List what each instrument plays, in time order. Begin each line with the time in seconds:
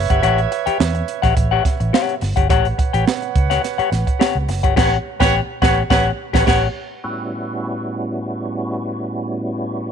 Already playing: horn section B4 C#5 E5
0.10 fingered electric bass G1, clean electric guitar G4 C#5 F#5, kick, closed hi-hat
0.23 fingered electric bass A1, clean electric guitar G4 C#5 F#5, closed hi-hat
0.38 closed hi-hat
0.51 muted clean electric guitar stroke, closed hi-hat
0.66 clean electric guitar G4 C#5 G5, muted fingered electric bass stroke, closed hi-hat
0.80 fingered electric bass E2, snare
0.95 muted clean electric guitar stroke, closed hi-hat
1.08 closed hi-hat
1.22 fingered electric bass A1, clean electric guitar G4 C#5 F#5, kick, snare, closed hi-hat
1.37 fingered electric bass A1, muted clean electric guitar stroke, kick, closed hi-hat
1.51 clean electric guitar G4 C#5 F#5
1.65 muted clean electric guitar stroke, kick, snare, closed hi-hat
1.80 fingered electric bass A1, muted clean electric guitar stroke, closed hi-hat
1.93 clean electric guitar G4 C#5 F#5, snare
2.09 closed hi-hat
2.21 fingered electric bass G1, muted clean electric guitar stroke, snare, open hi-hat
2.36 fingered electric bass G1, clean electric guitar G4 C#5 F#5, kick, closed hi-hat
2.49 fingered electric bass A1, clean electric guitar G4 C#5 F#5, horn section B4 C#5 F#5, kick, closed hi-hat
2.65 closed hi-hat
2.78 muted clean electric guitar stroke, kick, closed hi-hat
2.93 fingered electric bass A1, clean electric guitar G4 C#5 G5, closed hi-hat
3.07 muted clean electric guitar stroke, snare
3.22 muted clean electric guitar stroke, closed hi-hat
3.36 fingered electric bass C#2, kick, closed hi-hat
3.50 clean electric guitar G4 C#5 F#5, snare, closed hi-hat
3.64 muted clean electric guitar stroke, snare, closed hi-hat
3.78 clean electric guitar G4 C#5 F#5, muted fingered electric bass stroke, closed hi-hat
3.92 fingered electric bass A1, muted clean electric guitar stroke, snare, closed hi-hat
4.07 muted clean electric guitar stroke, kick, closed hi-hat
4.19 clean electric guitar G4 C#5 F#5, snare
4.35 fingered electric bass C#2
4.48 fingered electric bass F#1, muted clean electric guitar stroke, snare, open hi-hat
4.63 fingered electric bass G1, clean electric guitar G4 C#5 F#5, kick, closed hi-hat
4.76 fingered electric bass A1, clean electric guitar G4 C#5 F#5, horn section B4 C#5 F#5, kick, snare, crash
5.20 fingered electric bass A1, clean electric guitar G4 C#5 G5, horn section B4 C#5 F#5, kick, snare
5.62 fingered electric bass A1, clean electric guitar G4 C#5 F#5, horn section B4 C#5 F#5, kick, snare
5.90 fingered electric bass A1, clean electric guitar G4 C#5 F#5, horn section B4 C#5 F#5, kick, snare
6.33 fingered electric bass A1, clean electric guitar G4 C#5 F#5, horn section B4 C#5 F#5, kick, snare
6.46 fingered electric bass A1, clean electric guitar G4 C#5 F#5, horn section B4 C#5 F#5, kick, snare, crash
7.04 tonewheel organ A2 G3 B3 C#4 E4 F#4